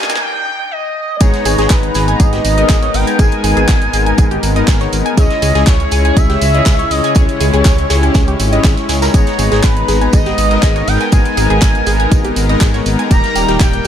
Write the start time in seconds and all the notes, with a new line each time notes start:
Already playing: D#2 D#3 G3 A#3 D#4 A#4 G#5, riser
0.03 snare
0.10 G5, snare, closed hi-hat
0.15 snare
0.22 G5
0.71 D#5
1.21 G#1 G#3 B3 D#4 G#4 C#5 G#5 A#5, kick, closed hi-hat, tambourine
1.34 snare, closed hi-hat
1.45 G#1 G#4 G#5, open hi-hat, tambourine
1.58 G#1 G#4 G#5, snare, closed hi-hat
1.70 G#1 G#4 B4 G#5, kick, snare, clap, closed hi-hat, tambourine
1.83 closed hi-hat
1.94 G#1 G#4 G#5, snare, open hi-hat, tambourine
2.08 G#5 G#6, closed hi-hat
2.20 G#1 G#4 D#5 G#5, kick, closed hi-hat, tambourine
2.33 G4 G5, snare, closed hi-hat
2.44 G#1, open hi-hat, tambourine
2.58 G#3 B3 D#4 A#4 D#5 D#6, closed hi-hat
2.69 G#1 G#4 G#5, kick, snare, clap, closed hi-hat, tambourine
2.82 C#5 C#6, snare, closed hi-hat
2.94 G#1 G5, open hi-hat
3.07 G#5 G#6, closed hi-hat
3.19 G#1 G#3 B3 D#4 G#4 A#4 G#5, kick, closed hi-hat, tambourine
3.32 closed hi-hat
3.44 G#1 G#4 G#5, open hi-hat, tambourine
3.57 G#1 G#4 G#5, closed hi-hat
3.68 G#1 G#4, kick, snare, clap, closed hi-hat, tambourine
3.82 closed hi-hat
3.93 G#1 G#4 G#5, open hi-hat, tambourine
4.06 G#5 G#6, closed hi-hat
4.18 G#1 G#4 G#5, kick, closed hi-hat, tambourine
4.31 G4 G5, closed hi-hat
4.43 G#1, open hi-hat, tambourine
4.56 G#3 B3 D#4 A#4 D#5 D#6, closed hi-hat
4.67 G#1 G#4 G#5, kick, snare, clap, closed hi-hat, tambourine
4.80 C#5 C#6, snare, closed hi-hat
4.93 G#1, open hi-hat, tambourine
5.06 G#5 G#6, closed hi-hat
5.17 C#2 C#3 G#3 C#4 E4 G#4 C#5 D#5 G#5, kick, closed hi-hat, tambourine
5.30 snare, closed hi-hat
5.42 C#2 G#4 G#5, open hi-hat, tambourine
5.55 C#2 G#4 G#5, snare, closed hi-hat
5.67 C#2 G#4 C#5 G#5, kick, snare, clap, closed hi-hat, tambourine
5.80 closed hi-hat
5.91 C#2 G#4 G#5, open hi-hat, tambourine
6.05 G#5 G#6, closed hi-hat
6.17 C#2 G#4 E5 G#5, kick, closed hi-hat, tambourine
6.30 G4 G5, snare, closed hi-hat
6.41 C#2, open hi-hat, tambourine
6.54 G#3 C#4 E4 C#5 D#5 D#6, closed hi-hat
6.66 C#2 G#4 G#5, kick, snare, clap, closed hi-hat, tambourine
6.79 C#5 C#6, snare, closed hi-hat
6.91 C#2 D#5, open hi-hat
7.04 G#5 G#6, closed hi-hat
7.15 C#2 G#3 C#4 E4 G4 G#4 C#5 G#5, kick, closed hi-hat, tambourine
7.29 closed hi-hat
7.41 C#2 G#4 G#5, open hi-hat, tambourine
7.53 C#2 G#4 G#5, closed hi-hat
7.65 C#2 G#4 G#5, kick, snare, clap, closed hi-hat, tambourine
7.78 closed hi-hat
7.90 C#2 G#4 G#5, snare, open hi-hat, tambourine
8.03 G#5 G#6, closed hi-hat
8.14 C#2 G#4 G#5, kick, snare, closed hi-hat, tambourine
8.28 G4 G5, closed hi-hat
8.39 G#1, open hi-hat, tambourine
8.53 G#3 C#4 E4 C#5 D#5 D#6, closed hi-hat
8.64 G#1 G#4 G#5, kick, snare, clap, closed hi-hat, tambourine
8.77 C#5 C#6, snare, closed hi-hat
8.89 C#2 G#4 G#5, snare, open hi-hat, tambourine
9.02 A#4 A#5, snare, closed hi-hat, tambourine
9.14 G#1 G#3 B3 D#4 G#4 C#5 G#5 A#5, kick, closed hi-hat, tambourine
9.27 snare, closed hi-hat
9.39 G#1 G#4 G#5, open hi-hat, tambourine
9.52 G#1 G#4 G#5, snare, closed hi-hat
9.63 G#1 G#4 B4 G#5, kick, snare, clap, closed hi-hat, tambourine
9.77 closed hi-hat
9.88 G#1 G#4 G#5, snare, open hi-hat, tambourine
10.01 G#5 G#6, closed hi-hat
10.13 G#1 G#4 D#5 G#5, kick, closed hi-hat, tambourine
10.26 G4 G5, snare, closed hi-hat
10.38 G#1, open hi-hat, tambourine
10.51 G#3 B3 D#4 A#4 D#5 D#6, closed hi-hat
10.62 G#1 G#4 G#5, kick, snare, clap, closed hi-hat, tambourine
10.76 C#5 C#6, snare, closed hi-hat
10.87 G#1 G5, open hi-hat
11.01 G#5 G#6, closed hi-hat
11.12 G#1 G#3 B3 D#4 G#4 A#4 G#5, kick, closed hi-hat, tambourine
11.25 closed hi-hat
11.37 G#1 G#4 G#5, open hi-hat, tambourine
11.50 G#1 G#4 G#5, closed hi-hat
11.62 G#1 G#4 G#5, kick, snare, clap, closed hi-hat, tambourine
11.75 closed hi-hat
11.86 G#1 G#4 G#5, open hi-hat, tambourine
12.00 G#5 G#6, closed hi-hat
12.12 G#1 G#4 G#5, kick, closed hi-hat, tambourine
12.25 G4 G5, closed hi-hat
12.36 G#1, open hi-hat, tambourine
12.49 G#3 B3 D#4 A#4 D#5 D#6, closed hi-hat
12.61 G#1 G#4 G#5, kick, snare, clap, closed hi-hat, tambourine
12.74 C#5 C#6, snare, closed hi-hat
12.86 G#1, open hi-hat, tambourine
12.99 G#5 G#6, closed hi-hat
13.11 D#1 D#3 G3 A#3 D#4 G4 A#4 G5 A#5, kick, closed hi-hat, tambourine
13.24 snare, closed hi-hat
13.35 D#1 G4 G5, open hi-hat, tambourine
13.49 D#1 G4 G5, snare, closed hi-hat
13.60 D#1 G4 G5, kick, snare, clap, closed hi-hat, tambourine
13.73 closed hi-hat